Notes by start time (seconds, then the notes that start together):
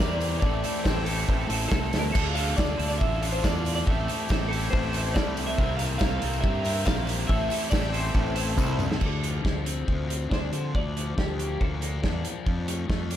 Already playing: G4 A#4 C5 D5 G5 C6
0.00 E2 C3 E3 G3 C4 E4 A#4, snare
0.20 open hi-hat, tambourine
0.39 A1 A2 E3 A3 C4 E4 G4 A4 D5, kick, tambourine
0.46 A4 E5
0.54 tambourine
0.62 A3 C4 E4 A4, open hi-hat, tambourine
0.76 tambourine
0.84 A1 A2 E3 A3 C4 E4 A4 C5, kick, snare, tambourine
0.97 tambourine
1.05 A3 C4 E4 A4, open hi-hat
1.09 tambourine
1.19 tambourine
1.29 A1, kick
1.41 tambourine
1.49 A1 A3 C4 E4 A4, open hi-hat, tambourine
1.69 C2 A2 E3 A3 C4 E4 A4, kick, snare, tambourine
1.93 D2, snare, open hi-hat
1.99 A#4
2.04 tambourine
2.12 D2 D3 A3 D4 F4 A4 D6, kick, crash
2.34 D4 F4 A4 F5, open hi-hat, tambourine
2.57 D2 D3 A3 D4 F4 A4 D5, kick, snare, tambourine
2.69 tambourine
2.79 D2 D4 F4 A4, open hi-hat
2.88 D5, tambourine
2.98 A1 E5, kick, tambourine
3.12 tambourine
3.22 D4 F4 A4, open hi-hat, tambourine
3.32 C5
3.42 E2 D3 A3 D4 F4 A4 D5, kick, snare, tambourine
3.65 open hi-hat, tambourine
3.75 D5
3.85 A1 A2 E3 A3 C4 E4 G4 A4 E5 G5 C6, kick
4.07 A3 C4 E4 A4, open hi-hat, tambourine
4.19 tambourine
4.28 A1 A2 E3 A3 C4 E4 A4, kick, snare, tambourine
4.40 tambourine
4.49 A3 C4 E4 A4
4.53 open hi-hat
4.61 tambourine
4.70 A1 C5, kick
4.84 tambourine
4.93 A3 C4 E4 A4, open hi-hat, tambourine
5.14 C2 A2 A3 C4 E4 A4 D5, kick, snare, tambourine
5.37 open hi-hat, tambourine
5.47 E5
5.58 C2 C3 E3 G3 A#3 C4 E4 A4 A#4 C5, kick
5.77 E4 A#4 F5, open hi-hat, tambourine
5.81 G3 C4
5.89 tambourine
5.98 C2 C3 E3 G3 C4 E4 A#4 F5, kick, snare, tambourine
6.10 tambourine
6.22 C2 G3 C4 E4 A#4, open hi-hat
6.33 tambourine
6.41 G2 E5, kick
6.55 tambourine
6.63 G3 C4 E4 A#4, open hi-hat, tambourine
6.85 A#1 C3 E3 G3 C4 E4 A#4 F5, kick, snare, tambourine
7.07 open hi-hat, tambourine
7.18 tambourine
7.27 A1 A2 E3 A3 C4 E4 G4 A4 E5, kick, tambourine
7.40 tambourine
7.49 A3 C4 E4 A4, open hi-hat, tambourine
7.62 tambourine
7.70 A1 A2 E3 A3 C4 E4 D5, kick, snare, tambourine
7.74 A4
7.84 tambourine
7.92 A3 C4 E4 A4 C5, open hi-hat, tambourine
8.14 A1, kick, tambourine
8.27 tambourine
8.35 A3 C4 E4 A4, open hi-hat, tambourine
8.57 C2 A2 E3 A3 C4 E4 A4, kick, high tom, tambourine
8.69 tambourine
8.79 mid tom, tambourine
8.92 snare
9.01 D2 D3, kick, crash
9.06 A4
9.22 F3, closed hi-hat
9.44 D2 F3, kick, snare
9.65 C4, closed hi-hat
9.87 D2 F3, kick
10.08 C4, closed hi-hat
10.30 D2 D4 C5, kick, snare
10.52 D3 F3, closed hi-hat
10.75 D2 D3 D5, kick
10.96 F3, closed hi-hat
11.17 D2 F3 G4, kick, snare
11.39 A#3, closed hi-hat
11.59 D2 F3 A4, kick
11.81 A#3, closed hi-hat
12.03 E2 D4, kick, snare
12.23 F3, closed hi-hat
12.45 F2 F3, kick
12.66 A3, closed hi-hat
12.88 F2 A3, kick, snare
13.10 D4, closed hi-hat